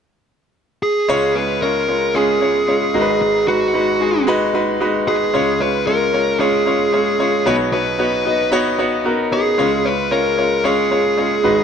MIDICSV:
0, 0, Header, 1, 3, 480
1, 0, Start_track
1, 0, Tempo, 530973
1, 984, Time_signature, 4, 2, 24, 8
1, 10520, End_track
2, 0, Start_track
2, 0, Title_t, "Lead electric guitar"
2, 0, Program_c, 0, 29
2, 749, Note_on_c, 0, 68, 85
2, 1226, Note_on_c, 0, 71, 88
2, 1241, Note_off_c, 0, 68, 0
2, 1461, Note_off_c, 0, 71, 0
2, 1464, Note_on_c, 0, 70, 93
2, 1943, Note_on_c, 0, 68, 82
2, 1958, Note_off_c, 0, 70, 0
2, 2897, Note_off_c, 0, 68, 0
2, 2908, Note_on_c, 0, 68, 78
2, 3142, Note_off_c, 0, 68, 0
2, 3145, Note_on_c, 0, 66, 69
2, 3829, Note_off_c, 0, 66, 0
2, 4589, Note_on_c, 0, 68, 89
2, 5067, Note_on_c, 0, 71, 86
2, 5081, Note_off_c, 0, 68, 0
2, 5301, Note_off_c, 0, 71, 0
2, 5305, Note_on_c, 0, 70, 96
2, 5751, Note_off_c, 0, 70, 0
2, 5787, Note_on_c, 0, 68, 81
2, 6749, Note_on_c, 0, 71, 86
2, 6774, Note_off_c, 0, 68, 0
2, 6813, Note_off_c, 0, 71, 0
2, 6989, Note_on_c, 0, 71, 79
2, 7670, Note_off_c, 0, 71, 0
2, 8431, Note_on_c, 0, 68, 85
2, 8909, Note_on_c, 0, 71, 84
2, 8922, Note_off_c, 0, 68, 0
2, 9145, Note_off_c, 0, 71, 0
2, 9149, Note_on_c, 0, 70, 95
2, 9629, Note_on_c, 0, 68, 86
2, 9641, Note_off_c, 0, 70, 0
2, 10520, Note_off_c, 0, 68, 0
2, 10520, End_track
3, 0, Start_track
3, 0, Title_t, "Grand piano"
3, 0, Program_c, 1, 0
3, 979, Note_on_c, 1, 56, 101
3, 982, Note_on_c, 1, 61, 93
3, 985, Note_on_c, 1, 37, 71
3, 985, Note_on_c, 1, 49, 72
3, 987, Note_on_c, 1, 65, 95
3, 990, Note_on_c, 1, 73, 120
3, 1150, Note_off_c, 1, 56, 0
3, 1152, Note_off_c, 1, 61, 0
3, 1154, Note_off_c, 1, 65, 0
3, 1156, Note_off_c, 1, 73, 0
3, 1158, Control_c, 1, 64, 127
3, 1220, Note_on_c, 1, 56, 64
3, 1222, Note_on_c, 1, 61, 61
3, 1225, Note_on_c, 1, 65, 56
3, 1229, Note_on_c, 1, 68, 67
3, 1390, Note_off_c, 1, 56, 0
3, 1392, Note_off_c, 1, 61, 0
3, 1393, Note_off_c, 1, 65, 0
3, 1395, Note_off_c, 1, 68, 0
3, 1460, Note_on_c, 1, 56, 70
3, 1464, Note_on_c, 1, 61, 64
3, 1467, Note_on_c, 1, 65, 64
3, 1471, Note_on_c, 1, 73, 80
3, 1631, Note_off_c, 1, 56, 0
3, 1633, Note_off_c, 1, 61, 0
3, 1634, Note_off_c, 1, 65, 0
3, 1636, Note_off_c, 1, 73, 0
3, 1701, Note_on_c, 1, 56, 66
3, 1704, Note_on_c, 1, 61, 58
3, 1708, Note_on_c, 1, 65, 61
3, 1711, Note_on_c, 1, 73, 71
3, 1871, Note_off_c, 1, 56, 0
3, 1873, Note_off_c, 1, 61, 0
3, 1874, Note_off_c, 1, 65, 0
3, 1876, Note_off_c, 1, 73, 0
3, 1940, Note_on_c, 1, 56, 85
3, 1943, Note_on_c, 1, 61, 81
3, 1947, Note_on_c, 1, 65, 77
3, 1951, Note_on_c, 1, 68, 95
3, 2110, Note_off_c, 1, 56, 0
3, 2112, Note_off_c, 1, 61, 0
3, 2114, Note_off_c, 1, 65, 0
3, 2116, Note_off_c, 1, 68, 0
3, 2178, Note_on_c, 1, 56, 66
3, 2182, Note_on_c, 1, 61, 61
3, 2185, Note_on_c, 1, 65, 66
3, 2189, Note_on_c, 1, 73, 74
3, 2349, Note_off_c, 1, 56, 0
3, 2351, Note_off_c, 1, 61, 0
3, 2353, Note_off_c, 1, 65, 0
3, 2355, Note_off_c, 1, 73, 0
3, 2419, Note_on_c, 1, 56, 69
3, 2422, Note_on_c, 1, 61, 62
3, 2426, Note_on_c, 1, 65, 62
3, 2429, Note_on_c, 1, 73, 76
3, 2590, Note_off_c, 1, 56, 0
3, 2591, Note_off_c, 1, 61, 0
3, 2593, Note_off_c, 1, 65, 0
3, 2595, Note_off_c, 1, 73, 0
3, 2628, Note_off_c, 1, 37, 0
3, 2628, Note_off_c, 1, 49, 0
3, 2658, Note_on_c, 1, 56, 83
3, 2661, Note_on_c, 1, 63, 74
3, 2663, Note_on_c, 1, 32, 64
3, 2664, Note_on_c, 1, 44, 63
3, 2665, Note_on_c, 1, 66, 68
3, 2670, Note_on_c, 1, 70, 73
3, 2677, Control_c, 1, 64, 0
3, 2727, Note_on_c, 1, 71, 86
3, 2730, Note_off_c, 1, 70, 0
3, 2850, Control_c, 1, 64, 127
3, 3055, Note_off_c, 1, 56, 0
3, 3056, Note_off_c, 1, 63, 0
3, 3058, Note_off_c, 1, 66, 0
3, 3089, Note_off_c, 1, 71, 0
3, 3137, Note_on_c, 1, 56, 61
3, 3140, Note_on_c, 1, 63, 60
3, 3144, Note_on_c, 1, 66, 57
3, 3147, Note_on_c, 1, 71, 71
3, 3309, Note_off_c, 1, 56, 0
3, 3311, Note_off_c, 1, 63, 0
3, 3313, Note_off_c, 1, 66, 0
3, 3314, Note_off_c, 1, 71, 0
3, 3378, Note_on_c, 1, 56, 72
3, 3381, Note_on_c, 1, 63, 68
3, 3385, Note_on_c, 1, 66, 65
3, 3389, Note_on_c, 1, 71, 80
3, 3549, Note_off_c, 1, 56, 0
3, 3551, Note_off_c, 1, 63, 0
3, 3553, Note_off_c, 1, 66, 0
3, 3555, Note_off_c, 1, 71, 0
3, 3618, Note_on_c, 1, 56, 65
3, 3623, Note_on_c, 1, 63, 61
3, 3626, Note_on_c, 1, 66, 61
3, 3629, Note_on_c, 1, 68, 73
3, 3789, Note_off_c, 1, 56, 0
3, 3792, Note_off_c, 1, 63, 0
3, 3793, Note_off_c, 1, 66, 0
3, 3795, Note_off_c, 1, 68, 0
3, 3858, Note_on_c, 1, 56, 100
3, 3863, Note_on_c, 1, 63, 90
3, 3866, Note_on_c, 1, 66, 92
3, 3870, Note_on_c, 1, 71, 108
3, 4030, Note_off_c, 1, 56, 0
3, 4032, Note_off_c, 1, 63, 0
3, 4033, Note_off_c, 1, 66, 0
3, 4036, Note_off_c, 1, 71, 0
3, 4099, Note_on_c, 1, 56, 82
3, 4104, Note_on_c, 1, 63, 78
3, 4107, Note_on_c, 1, 66, 76
3, 4110, Note_on_c, 1, 71, 94
3, 4270, Note_off_c, 1, 56, 0
3, 4272, Note_off_c, 1, 63, 0
3, 4274, Note_off_c, 1, 66, 0
3, 4275, Note_off_c, 1, 71, 0
3, 4341, Note_on_c, 1, 56, 78
3, 4344, Note_on_c, 1, 63, 76
3, 4347, Note_on_c, 1, 66, 76
3, 4352, Note_on_c, 1, 71, 93
3, 4511, Note_off_c, 1, 56, 0
3, 4513, Note_off_c, 1, 63, 0
3, 4514, Note_off_c, 1, 66, 0
3, 4516, Note_off_c, 1, 71, 0
3, 4547, Note_off_c, 1, 32, 0
3, 4548, Note_off_c, 1, 44, 0
3, 4582, Note_on_c, 1, 56, 67
3, 4585, Note_on_c, 1, 63, 57
3, 4589, Note_on_c, 1, 66, 59
3, 4592, Note_on_c, 1, 71, 70
3, 4751, Note_off_c, 1, 56, 0
3, 4753, Note_off_c, 1, 63, 0
3, 4755, Note_off_c, 1, 66, 0
3, 4756, Note_off_c, 1, 71, 0
3, 4821, Note_on_c, 1, 56, 85
3, 4824, Note_on_c, 1, 61, 78
3, 4826, Note_on_c, 1, 37, 61
3, 4826, Note_on_c, 1, 49, 60
3, 4827, Note_on_c, 1, 65, 77
3, 4832, Note_on_c, 1, 73, 99
3, 4833, Control_c, 1, 64, 0
3, 4991, Note_off_c, 1, 56, 0
3, 4993, Note_off_c, 1, 61, 0
3, 4994, Note_off_c, 1, 65, 0
3, 4996, Note_off_c, 1, 73, 0
3, 5014, Control_c, 1, 64, 127
3, 5061, Note_on_c, 1, 56, 65
3, 5065, Note_on_c, 1, 61, 60
3, 5068, Note_on_c, 1, 65, 57
3, 5072, Note_on_c, 1, 73, 73
3, 5231, Note_off_c, 1, 56, 0
3, 5233, Note_off_c, 1, 61, 0
3, 5234, Note_off_c, 1, 65, 0
3, 5237, Note_off_c, 1, 73, 0
3, 5301, Note_on_c, 1, 56, 70
3, 5305, Note_on_c, 1, 61, 68
3, 5309, Note_on_c, 1, 65, 64
3, 5312, Note_on_c, 1, 73, 81
3, 5471, Note_off_c, 1, 56, 0
3, 5473, Note_off_c, 1, 61, 0
3, 5475, Note_off_c, 1, 65, 0
3, 5476, Note_off_c, 1, 73, 0
3, 5541, Note_on_c, 1, 56, 64
3, 5545, Note_on_c, 1, 61, 56
3, 5549, Note_on_c, 1, 65, 57
3, 5553, Note_on_c, 1, 73, 74
3, 5711, Note_off_c, 1, 56, 0
3, 5713, Note_off_c, 1, 61, 0
3, 5715, Note_off_c, 1, 65, 0
3, 5717, Note_off_c, 1, 73, 0
3, 5780, Note_on_c, 1, 56, 82
3, 5783, Note_on_c, 1, 61, 76
3, 5788, Note_on_c, 1, 65, 76
3, 5790, Note_on_c, 1, 73, 91
3, 5951, Note_off_c, 1, 56, 0
3, 5952, Note_off_c, 1, 61, 0
3, 5954, Note_off_c, 1, 65, 0
3, 5955, Note_off_c, 1, 73, 0
3, 6019, Note_on_c, 1, 56, 69
3, 6022, Note_on_c, 1, 61, 64
3, 6026, Note_on_c, 1, 65, 64
3, 6029, Note_on_c, 1, 73, 77
3, 6190, Note_off_c, 1, 56, 0
3, 6192, Note_off_c, 1, 61, 0
3, 6193, Note_off_c, 1, 65, 0
3, 6195, Note_off_c, 1, 73, 0
3, 6258, Note_on_c, 1, 56, 73
3, 6263, Note_on_c, 1, 61, 60
3, 6266, Note_on_c, 1, 65, 62
3, 6270, Note_on_c, 1, 73, 80
3, 6430, Note_off_c, 1, 56, 0
3, 6432, Note_off_c, 1, 61, 0
3, 6433, Note_off_c, 1, 65, 0
3, 6435, Note_off_c, 1, 73, 0
3, 6497, Note_on_c, 1, 56, 71
3, 6502, Note_on_c, 1, 61, 65
3, 6504, Note_on_c, 1, 65, 70
3, 6509, Note_on_c, 1, 73, 86
3, 6669, Note_off_c, 1, 56, 0
3, 6671, Note_off_c, 1, 61, 0
3, 6672, Note_off_c, 1, 65, 0
3, 6675, Note_off_c, 1, 73, 0
3, 6709, Note_off_c, 1, 37, 0
3, 6709, Note_off_c, 1, 49, 0
3, 6739, Note_on_c, 1, 59, 86
3, 6742, Note_on_c, 1, 63, 78
3, 6744, Note_on_c, 1, 35, 59
3, 6745, Note_on_c, 1, 47, 61
3, 6746, Note_on_c, 1, 66, 80
3, 6749, Note_on_c, 1, 73, 104
3, 6757, Control_c, 1, 64, 0
3, 6897, Control_c, 1, 64, 127
3, 6910, Note_off_c, 1, 59, 0
3, 6911, Note_off_c, 1, 63, 0
3, 6914, Note_off_c, 1, 66, 0
3, 6915, Note_off_c, 1, 73, 0
3, 6979, Note_on_c, 1, 59, 63
3, 6983, Note_on_c, 1, 63, 57
3, 6987, Note_on_c, 1, 66, 56
3, 6990, Note_on_c, 1, 73, 72
3, 7150, Note_off_c, 1, 59, 0
3, 7152, Note_off_c, 1, 63, 0
3, 7154, Note_off_c, 1, 66, 0
3, 7155, Note_off_c, 1, 73, 0
3, 7219, Note_on_c, 1, 59, 70
3, 7222, Note_on_c, 1, 63, 68
3, 7226, Note_on_c, 1, 66, 66
3, 7229, Note_on_c, 1, 73, 76
3, 7390, Note_off_c, 1, 59, 0
3, 7392, Note_off_c, 1, 63, 0
3, 7394, Note_off_c, 1, 66, 0
3, 7395, Note_off_c, 1, 73, 0
3, 7459, Note_on_c, 1, 59, 66
3, 7463, Note_on_c, 1, 63, 59
3, 7467, Note_on_c, 1, 66, 57
3, 7471, Note_on_c, 1, 75, 70
3, 7630, Note_off_c, 1, 59, 0
3, 7632, Note_off_c, 1, 63, 0
3, 7634, Note_off_c, 1, 66, 0
3, 7636, Note_off_c, 1, 75, 0
3, 7698, Note_on_c, 1, 59, 102
3, 7703, Note_on_c, 1, 63, 95
3, 7705, Note_on_c, 1, 66, 94
3, 7708, Note_on_c, 1, 73, 116
3, 7869, Note_off_c, 1, 59, 0
3, 7872, Note_off_c, 1, 63, 0
3, 7873, Note_off_c, 1, 66, 0
3, 7875, Note_off_c, 1, 73, 0
3, 7939, Note_on_c, 1, 59, 83
3, 7942, Note_on_c, 1, 63, 72
3, 7946, Note_on_c, 1, 66, 79
3, 7950, Note_on_c, 1, 73, 88
3, 8110, Note_off_c, 1, 59, 0
3, 8111, Note_off_c, 1, 63, 0
3, 8113, Note_off_c, 1, 66, 0
3, 8115, Note_off_c, 1, 73, 0
3, 8178, Note_on_c, 1, 59, 79
3, 8182, Note_on_c, 1, 63, 73
3, 8185, Note_on_c, 1, 66, 75
3, 8189, Note_on_c, 1, 70, 86
3, 8349, Note_off_c, 1, 59, 0
3, 8351, Note_off_c, 1, 63, 0
3, 8353, Note_off_c, 1, 66, 0
3, 8355, Note_off_c, 1, 70, 0
3, 8417, Note_on_c, 1, 59, 63
3, 8420, Note_on_c, 1, 63, 55
3, 8424, Note_on_c, 1, 66, 56
3, 8428, Note_on_c, 1, 73, 71
3, 8589, Note_off_c, 1, 59, 0
3, 8591, Note_off_c, 1, 63, 0
3, 8593, Note_off_c, 1, 66, 0
3, 8594, Note_off_c, 1, 73, 0
3, 8628, Note_off_c, 1, 35, 0
3, 8628, Note_off_c, 1, 47, 0
3, 8658, Note_on_c, 1, 56, 93
3, 8661, Note_on_c, 1, 61, 82
3, 8663, Note_on_c, 1, 37, 61
3, 8663, Note_on_c, 1, 49, 57
3, 8665, Note_on_c, 1, 65, 79
3, 8668, Note_on_c, 1, 73, 94
3, 8675, Control_c, 1, 64, 0
3, 8829, Note_off_c, 1, 56, 0
3, 8831, Note_off_c, 1, 61, 0
3, 8833, Note_off_c, 1, 65, 0
3, 8835, Note_off_c, 1, 73, 0
3, 8855, Control_c, 1, 64, 127
3, 8897, Note_on_c, 1, 56, 63
3, 8901, Note_on_c, 1, 61, 57
3, 8904, Note_on_c, 1, 65, 59
3, 8908, Note_on_c, 1, 73, 72
3, 9069, Note_off_c, 1, 56, 0
3, 9071, Note_off_c, 1, 61, 0
3, 9072, Note_off_c, 1, 65, 0
3, 9075, Note_off_c, 1, 73, 0
3, 9138, Note_on_c, 1, 56, 73
3, 9141, Note_on_c, 1, 61, 67
3, 9145, Note_on_c, 1, 65, 66
3, 9148, Note_on_c, 1, 73, 81
3, 9309, Note_off_c, 1, 56, 0
3, 9311, Note_off_c, 1, 61, 0
3, 9313, Note_off_c, 1, 65, 0
3, 9315, Note_off_c, 1, 73, 0
3, 9377, Note_on_c, 1, 56, 64
3, 9381, Note_on_c, 1, 61, 57
3, 9385, Note_on_c, 1, 65, 60
3, 9389, Note_on_c, 1, 73, 72
3, 9549, Note_off_c, 1, 56, 0
3, 9551, Note_off_c, 1, 61, 0
3, 9553, Note_off_c, 1, 65, 0
3, 9555, Note_off_c, 1, 73, 0
3, 9618, Note_on_c, 1, 56, 90
3, 9621, Note_on_c, 1, 61, 79
3, 9624, Note_on_c, 1, 65, 76
3, 9628, Note_on_c, 1, 73, 95
3, 9789, Note_off_c, 1, 56, 0
3, 9791, Note_off_c, 1, 61, 0
3, 9793, Note_off_c, 1, 65, 0
3, 9795, Note_off_c, 1, 73, 0
3, 9858, Note_on_c, 1, 56, 69
3, 9861, Note_on_c, 1, 61, 64
3, 9865, Note_on_c, 1, 65, 64
3, 9867, Note_on_c, 1, 73, 77
3, 10029, Note_off_c, 1, 56, 0
3, 10031, Note_off_c, 1, 61, 0
3, 10033, Note_off_c, 1, 65, 0
3, 10034, Note_off_c, 1, 73, 0
3, 10098, Note_on_c, 1, 56, 65
3, 10102, Note_on_c, 1, 61, 63
3, 10105, Note_on_c, 1, 65, 64
3, 10109, Note_on_c, 1, 73, 74
3, 10269, Note_off_c, 1, 56, 0
3, 10271, Note_off_c, 1, 61, 0
3, 10273, Note_off_c, 1, 65, 0
3, 10275, Note_off_c, 1, 73, 0
3, 10307, Note_off_c, 1, 37, 0
3, 10307, Note_off_c, 1, 49, 0
3, 10336, Note_on_c, 1, 56, 78
3, 10341, Note_on_c, 1, 63, 74
3, 10342, Note_on_c, 1, 44, 67
3, 10343, Note_on_c, 1, 32, 62
3, 10344, Note_on_c, 1, 66, 72
3, 10347, Note_on_c, 1, 71, 85
3, 10356, Control_c, 1, 64, 0
3, 10490, Control_c, 1, 64, 127
3, 10520, Note_off_c, 1, 32, 0
3, 10520, Note_off_c, 1, 44, 0
3, 10520, Note_off_c, 1, 56, 0
3, 10520, Note_off_c, 1, 63, 0
3, 10520, Note_off_c, 1, 66, 0
3, 10520, Note_off_c, 1, 71, 0
3, 10520, End_track
0, 0, End_of_file